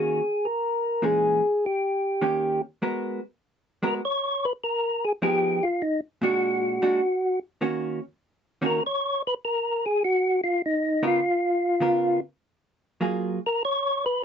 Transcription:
0.00 0.19 D#3 medium
0.00 0.20 A#3 medium
0.00 0.20 C#4 medium
0.00 0.20 F#4 medium
0.00 0.47 G#4 medium
0.45 1.05 A#4 medium
1.02 1.39 A#2 soft
1.02 1.40 E3 medium
1.02 1.40 G#3 medium
1.02 1.40 C#4 medium
1.02 1.65 G#4 medium
1.66 2.62 G4 medium
2.21 2.59 D#3 medium
2.21 2.59 A#3 medium
2.21 2.59 C#4 medium
2.21 2.60 G4 medium
2.82 3.19 G#3 medium
2.82 3.20 B3 medium
2.82 3.20 F#4 medium
2.82 3.20 A#4 medium
3.83 4.00 G#3 medium
3.83 4.00 B3 medium
3.83 4.00 F#4 medium
3.83 4.00 A#4 medium
3.87 3.95 A#4 medium
4.05 4.46 C#5 loud
4.45 4.53 B4 medium
4.64 5.05 A#4 medium
5.04 5.13 G#4 medium
5.22 5.59 F3 medium
5.22 5.59 B3 medium
5.22 5.59 D#4 medium
5.22 5.65 G4 medium
5.22 5.60 G#4 medium
5.63 5.82 F4 medium
5.82 6.01 D#4 medium
6.22 6.78 A#2 medium
6.22 6.79 G#3 medium
6.22 6.79 D4 medium
6.22 6.79 F#4 medium
6.22 7.39 F#4 medium
6.82 6.99 A#2 medium
6.82 6.99 G#3 medium
6.82 7.00 D4 medium
6.82 7.00 F#4 medium
7.61 7.98 D#3 medium
7.61 7.99 A#3 medium
7.61 7.99 C#4 medium
7.61 7.99 F#4 medium
8.62 8.79 D#3 medium
8.62 8.79 A#3 medium
8.62 8.79 C#4 medium
8.62 8.80 F#4 medium
8.66 8.83 A#4 medium
8.86 9.22 C#5 loud
9.27 9.34 B4 loud
9.45 9.85 A#4 medium
9.86 10.03 G#4 medium
10.04 10.41 F#4 loud
10.44 10.62 F4 medium
10.66 11.06 D#4 medium
11.03 11.19 C#3 medium
11.03 11.19 B3 medium
11.03 11.19 F4 medium
11.03 11.20 A#4 medium
11.07 12.20 F4 medium
11.80 12.18 C#3 medium
11.80 12.18 B3 medium
11.80 12.18 F4 medium
11.80 12.18 A#4 medium
13.01 13.37 F#3 medium
13.01 13.38 A#3 medium
13.01 13.38 F4 medium
13.01 13.38 G#4 medium
13.46 13.63 A#4 medium
13.65 14.05 C#5 loud
14.06 14.22 B4 loud

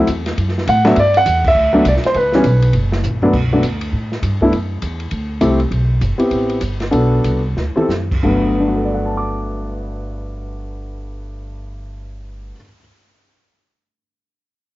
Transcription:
0.07 0.36 E2 medium
0.07 kick soft
0.07 hi-hat pedal medium
0.07 ride medium
0.26 snare medium
0.26 ride medium
0.37 0.66 F#2 medium
0.37 kick soft
0.37 ride medium
0.49 snare soft
0.58 snare soft
0.67 0.96 A2 loud
0.67 0.85 F#5 loud
0.67 kick soft
0.67 hi-hat pedal medium
0.67 ride medium
0.84 0.95 F#3 medium
0.84 0.95 A3 medium
0.84 0.95 B3 medium
0.84 0.95 D4 medium
0.84 0.97 E5 loud
0.84 snare soft
0.84 ride soft
0.96 1.25 G2 medium
0.96 1.17 D5 loud
0.96 kick soft
0.96 ride medium
1.14 1.44 F#5 loud
1.14 ride medium
1.26 1.54 E2 medium
1.26 kick soft
1.26 hi-hat pedal medium
1.26 ride medium
1.44 1.84 E5 loud
1.44 kick medium
1.44 crash medium
1.55 1.84 D2 medium
1.73 1.84 F#3 medium
1.73 1.84 A3 medium
1.73 1.84 B3 medium
1.73 1.84 D4 medium
1.85 2.02 C2 loud
1.85 1.93 D5 medium
1.85 kick soft
1.85 hi-hat pedal medium
1.85 ride medium
1.96 snare soft
2.03 2.16 C5 medium
2.03 muted upright bass stroke soft
2.03 snare soft
2.03 ride soft
2.14 2.43 C#2 medium
2.14 2.71 B4 medium
2.14 kick soft
2.14 ride medium
2.32 2.44 E3 medium
2.32 2.44 G3 medium
2.32 2.44 B3 medium
2.32 2.44 C#4 medium
2.32 snare soft
2.44 2.73 B1 loud
2.44 kick soft
2.44 hi-hat pedal medium
2.44 ride medium
2.62 ride medium
2.73 3.03 F#1 medium
2.73 kick soft
2.73 ride medium
2.92 snare medium
3.03 3.32 A#1 medium
3.03 floor tom medium
3.03 hi-hat pedal medium
3.22 3.32 F#3 medium
3.22 3.33 A3 medium
3.22 3.32 B3 medium
3.22 3.32 D4 medium
3.22 floor tom medium
3.33 3.62 B1 medium
3.33 kick medium
3.33 crash medium
3.52 3.62 F#3 medium
3.52 3.62 A3 medium
3.52 3.62 B3 soft
3.52 3.62 D4 medium
3.63 3.92 D2 medium
3.63 hi-hat pedal medium
3.63 ride medium
3.81 ride medium
3.93 4.21 A2 medium
3.93 kick soft
4.12 snare soft
4.22 4.51 G2 medium
4.22 kick soft
4.22 hi-hat pedal medium
4.22 ride medium
4.41 4.51 A3 medium
4.41 4.51 B3 medium
4.41 4.52 D4 medium
4.41 4.52 E4 medium
4.41 kick soft
4.52 4.81 F#2 medium
4.52 ride medium
4.82 5.11 E2 medium
4.82 kick soft
4.82 hi-hat pedal soft
4.82 ride medium
5.00 ride soft
5.11 5.40 D2 medium
5.11 kick soft
5.11 ride medium
5.41 5.70 C2 medium
5.41 5.57 A3 medium
5.41 5.58 C4 medium
5.41 5.57 E4 medium
5.41 5.58 G4 medium
5.41 kick soft
5.41 hi-hat pedal soft
5.41 ride medium
5.60 ride soft
5.71 6.00 B1 medium
5.71 kick soft
5.71 ride medium
6.01 6.18 F#1 medium
6.01 kick soft
6.01 hi-hat pedal medium
6.01 ride medium
6.18 6.58 B3 medium
6.18 6.58 C4 soft
6.18 6.59 E4 soft
6.18 6.59 G4 medium
6.18 muted upright bass stroke soft
6.18 ride soft
6.31 6.60 A1 medium
6.31 kick soft
6.31 ride medium
6.50 ride soft
6.61 6.91 G1 medium
6.61 kick soft
6.61 hi-hat pedal medium
6.61 ride medium
6.80 snare soft
6.80 ride soft
6.91 7.23 B1 medium
6.91 7.39 B3 medium
6.91 7.39 D4 medium
6.91 7.39 F#4 soft
6.91 7.40 A4 medium
6.91 kick soft
6.91 ride medium
7.24 7.55 C2 medium
7.24 kick soft
7.24 hi-hat pedal medium
7.24 ride medium
7.56 7.75 D2 medium
7.56 snare soft
7.76 7.88 C4 medium
7.76 7.88 E4 soft
7.76 7.88 G4 soft
7.76 7.88 A4 medium
7.76 muted upright bass stroke soft
7.76 high tom medium
7.89 8.23 F#2 medium
7.89 snare medium
7.89 hi-hat pedal medium
8.11 kick medium
8.11 crash medium
8.23 12.50 G1 medium
8.23 12.54 G2 soft
8.23 12.55 F#3 medium
8.23 12.55 A3 soft
8.23 12.56 B3 medium
8.60 12.51 D4 soft
8.68 12.55 F#4 soft
8.76 12.59 A4 soft
8.85 12.64 D5 soft
8.94 12.69 F#5 soft
9.06 12.74 A5 soft
9.17 12.80 D6 soft

